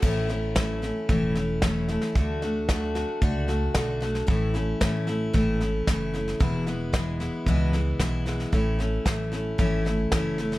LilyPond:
<<
  \new Staff \with { instrumentName = "Steel-string acoustic guitar" } { \time 4/4 \key a \major \tempo 4 = 113 <a, e a cis' e'>8 <a cis' e'>8 <e a cis' e'>8 <a cis' e'>8 <a, e a cis' e'>8 <a cis' e'>8 <e a cis' e'>8 <a cis' e'>8 | <d a d' fis'>8 <a d' fis'>8 <d a d' fis'>8 <a d' fis'>8 <d a d' fis'>8 <a d' fis'>8 <d a d' fis'>8 <a d' fis'>8 | <a, e a cis' e'>8 <a cis' e'>8 <e a cis' e'>8 <a cis' e'>8 <a, e a cis' e'>8 <a cis' e'>8 <e a cis' e'>8 <a cis' e'>8 | <e, b, e gis b e'>8 <e gis b e'>8 <e gis b e'>8 <e gis b e'>8 <e, b, e gis b e'>8 <e gis b e'>8 <e gis b e'>8 <e gis b e'>8 |
<a, e a cis' e'>8 <a cis' e'>8 <e a cis' e'>8 <a cis' e'>8 <a, e a cis' e'>8 <a cis' e'>8 <e a cis' e'>8 <a cis' e'>8 | }
  \new Staff \with { instrumentName = "Upright bass" } { \clef bass \time 4/4 \key a \major a,,2 e,,2 | d,2 cis,4 b,,4 | a,,4 a,,4 gis,,4 fis,,4 | e,,2 cis,4 b,,4 |
a,,4 a,,4 gis,,4 fis,,4 | }
  \new DrumStaff \with { instrumentName = "Drums" } \drummode { \time 4/4 <cymc bd sn>8 sn8 <hhp bd sn>8 sn8 <bd sn>8 sn8 <hhp bd sn>8 sn16 sn16 | <bd sn>8 sn8 <hhp bd sn>8 sn8 <bd sn>8 sn8 <hhp bd sn>8 sn16 sn16 | <bd sn>8 sn8 <hhp bd sn>8 sn8 <bd sn>8 sn8 <hhp bd sn>8 sn16 sn16 | <bd sn>8 sn8 <hhp bd sn>8 sn8 <bd sn>8 sn8 <hhp bd sn>8 sn16 sn16 |
<bd sn>8 sn8 <hhp bd sn>8 sn8 <bd sn>8 sn8 <hhp bd sn>8 sn16 sn16 | }
>>